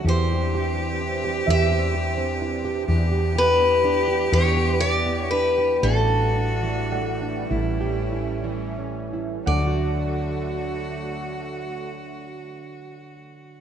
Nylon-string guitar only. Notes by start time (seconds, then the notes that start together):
0.07 E3 G4
0.32 G4
0.55 G4
0.78 C4
1.01 E4
1.24 G4
1.48 E3 G4
1.71 G4
1.95 G4
2.18 C4
2.42 E4
2.65 G4
2.88 E3 G4
3.12 G4
3.36 G4
3.59 B3
3.84 D4
4.08 G4
4.32 E3 G4
4.57 G4
4.82 G4
5.06 B3
5.32 D4
5.58 G4
5.83 A2 D4
6.36 D4
6.63 E3
6.92 A3
7.21 D4
7.50 A2 E4
7.81 G4
8.12 E4
8.44 E3
8.78 C#4
9.13 E4
9.47 D3
9.53 F#3
9.62 D4
9.67 F#4